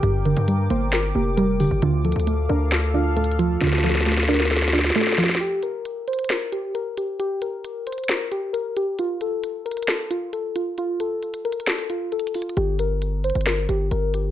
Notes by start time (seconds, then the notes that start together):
Already playing: D3 G3 A#3 A#4 G5 D6
0.03 G1 G2 G4, closed hi-hat
0.25 D3 A#4, closed hi-hat
0.37 G2, closed hi-hat
0.48 G3, closed hi-hat
0.70 G1 A#3 C5, closed hi-hat
0.93 A#4, snare, closed hi-hat
1.15 F1 A#3 G4
1.37 G3 A#4, closed hi-hat
1.60 D3 G4, open hi-hat
1.71 G1
1.82 D2 D3 F4 A4 F5, closed hi-hat
2.05 F3 A4, closed hi-hat
2.12 D2, closed hi-hat
2.20 closed hi-hat
2.27 A3, closed hi-hat
2.49 D2 D4 A#4
2.72 A4, snare, closed hi-hat
2.94 D4 F4
3.16 A3 A4, closed hi-hat
3.24 closed hi-hat
3.32 closed hi-hat
3.39 F3 F4, closed hi-hat
3.61 D2 D3 F4, snare, closed hi-hat
3.67 snare
3.73 snare
3.78 snare
3.84 F3 A4, snare, closed hi-hat
3.89 snare, closed hi-hat
3.95 snare, closed hi-hat
4.01 snare, closed hi-hat
4.06 A3, snare, closed hi-hat
4.12 snare
4.17 snare
4.23 snare
4.28 D4 A#4, snare, closed hi-hat
4.34 snare, closed hi-hat
4.40 snare, closed hi-hat
4.45 snare, closed hi-hat
4.50 A4, snare, closed hi-hat
4.57 snare
4.62 snare
4.68 snare
4.73 D4 F4, snare
4.79 snare
4.84 snare
4.90 snare
4.96 A3 A4, snare, closed hi-hat
5.01 snare, closed hi-hat
5.07 snare, closed hi-hat
5.12 snare
5.18 F3 F4, snare, open hi-hat
5.24 snare
5.29 snare
5.35 snare
5.40 G4, closed hi-hat
5.63 A#4, closed hi-hat
5.85 closed hi-hat
6.08 C5, closed hi-hat
6.13 closed hi-hat
6.19 closed hi-hat
6.24 closed hi-hat
6.29 A#4, snare, closed hi-hat
6.52 G4, closed hi-hat
6.75 A#4, closed hi-hat
6.97 G4, closed hi-hat
7.19 G4, closed hi-hat
7.42 A#4, closed hi-hat
7.65 closed hi-hat
7.87 C5, closed hi-hat
7.92 closed hi-hat
7.98 closed hi-hat
8.04 closed hi-hat
8.09 A#4, snare, closed hi-hat
8.31 G4, closed hi-hat
8.53 A#4, closed hi-hat
8.76 G4, closed hi-hat
8.99 F4, closed hi-hat
9.21 A4, closed hi-hat
9.44 closed hi-hat
9.66 A#4, closed hi-hat
9.71 closed hi-hat
9.77 closed hi-hat
9.83 closed hi-hat
9.88 A4, snare, closed hi-hat
10.11 F4, closed hi-hat
10.33 A4, closed hi-hat
10.56 F4, closed hi-hat
10.78 F4, closed hi-hat
11.00 A4, closed hi-hat
11.23 closed hi-hat
11.34 closed hi-hat
11.45 A#4, closed hi-hat
11.52 closed hi-hat
11.60 closed hi-hat
11.67 A4, snare, closed hi-hat
11.79 closed hi-hat
11.90 F4, closed hi-hat
12.12 A4, closed hi-hat
12.20 closed hi-hat
12.27 closed hi-hat
12.34 F4, closed hi-hat, open hi-hat
12.42 closed hi-hat
12.49 closed hi-hat
12.57 G1 G4, closed hi-hat
12.79 A#4, closed hi-hat
13.02 closed hi-hat
13.24 C5, closed hi-hat
13.30 closed hi-hat
13.35 G1, closed hi-hat
13.41 closed hi-hat
13.46 A#4, snare, closed hi-hat
13.69 G1 G4, closed hi-hat
13.91 G1 A#4, closed hi-hat
14.14 G4, closed hi-hat